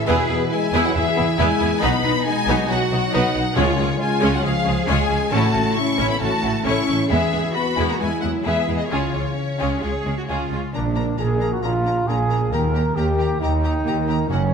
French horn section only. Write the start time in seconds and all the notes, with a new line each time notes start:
0.08 B2
0.52 G#3
0.85 F#3
0.96 E3
1.40 G#3
1.84 B3
2.28 G#3
2.68 F#3
3.56 C#3
3.98 G#3
4.33 F#3
4.44 F3
4.87 G#3
5.33 A3
5.78 C#4
6.10 B3
6.23 A3
6.67 C#4
7.13 E3
7.56 B3
7.89 A#3
8.00 G#3
8.24 F#3
8.47 E3
8.82 D#3
8.93 C#3